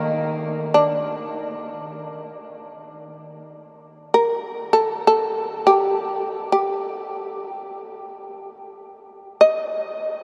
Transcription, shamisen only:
Already playing: D#4
0.74 D4
4.14 A#4
4.73 A4
5.07 A4
5.67 G4
6.52 G4
9.41 D#5

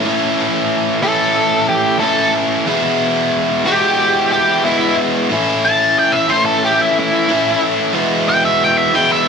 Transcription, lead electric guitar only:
1.03 A4
1.69 G4
2.00 A4
3.66 G4
4.32 G4
4.65 E4
5.65 A5
5.99 G5
6.12 E5
6.30 C5
6.46 A4
6.65 G4
6.81 E4
6.99 E4
8.29 G5
8.45 E5
8.64 G5
8.77 E5
8.95 G5
9.12 E5

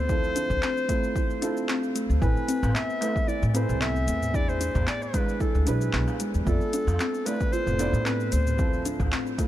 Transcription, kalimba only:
0.09 E4
0.36 D4
0.62 C4
0.89 A3
1.15 E4
1.42 D4
1.68 C4
1.95 A3
2.22 E4
2.48 C4
2.75 B3
3.01 A3
3.28 E4
3.54 C4
3.81 B3
4.07 A3
4.34 E4
4.61 D4
4.87 B3
5.14 G#3
5.40 E4
5.67 D4
5.93 B3
6.20 G#3
6.47 F4
6.74 D4
7.00 C4
7.27 A3
7.53 F4
7.79 D4
8.06 C4
8.33 A3
8.59 E4
8.86 D4
9.12 C4
9.38 A3

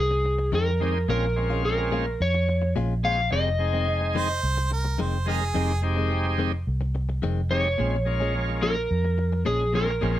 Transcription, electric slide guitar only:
0.00 G#4
0.55 A#4
1.10 A#4
1.65 A#4
2.22 C#5
3.05 F5
3.32 D#5
7.51 C#5
8.63 A#4
9.46 G#4
9.75 A#4

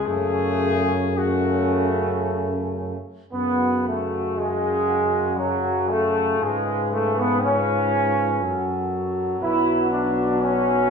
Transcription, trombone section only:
0.06 A3
1.18 A3
3.32 B3
3.86 A3
4.37 G#3
5.37 F#3
5.89 A3
6.41 G#3
6.92 A3
7.17 B3
7.42 C#4
9.42 E4
9.91 D4
10.41 C#4

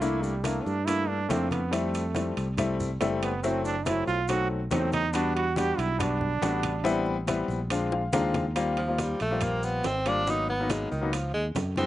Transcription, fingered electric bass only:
Already playing: C2
0.66 G2
1.31 F2
2.37 C2
3.01 F#1
4.07 B1
4.72 E2
5.78 B1
6.42 A1
7.48 A#1
8.13 D#2
9.21 A#1
9.85 G#1
10.92 C#2
11.35 D#2
11.56 F#2

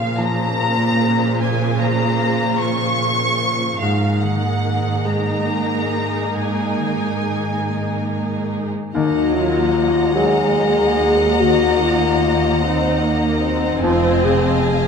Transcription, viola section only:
Already playing: C#3 A#3
3.80 A#3 D#4
8.96 F#3
10.16 G#3
11.41 A#3
12.64 C4
13.03 A#3
13.44 C4

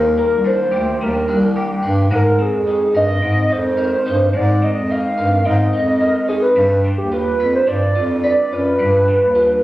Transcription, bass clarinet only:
Already playing: D#2
0.31 C2
0.72 D2
1.00 D#2
1.28 C2
1.83 G2
2.10 G#2
2.52 F2
2.95 G2
3.22 G#2
3.50 F2
4.07 G2
4.34 G#2
4.76 F2
5.18 G2
5.46 G#2
5.74 F2
6.57 G2
6.98 D#2
7.39 F2
7.67 G2
7.96 F2
8.52 F#2
8.79 G2
9.20 D#2

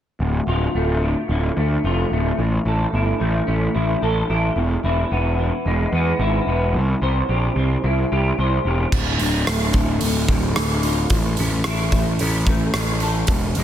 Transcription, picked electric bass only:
0.20 D1
0.47 D1
0.75 D1
1.29 D1
1.57 D2
1.84 F1
2.11 D1
2.38 A1
2.65 A1
2.93 G1
3.21 A1
3.48 A1
3.75 A1
4.02 A1
4.30 A1
4.56 E1
4.83 E1
5.11 E1
5.66 E1
5.92 E2
6.19 G#1
6.46 E1
6.73 C2
7.02 C2
7.29 A#1
7.56 C2
7.84 C2
8.12 C2
8.38 C2
8.65 E1
8.92 D1
9.19 D1
9.47 D1
9.74 D1
10.02 D1
10.28 D1
10.57 D1
11.10 A1
11.39 A1
11.66 A1
11.92 A1
12.21 A1
12.74 A1
13.28 E1
13.56 E1

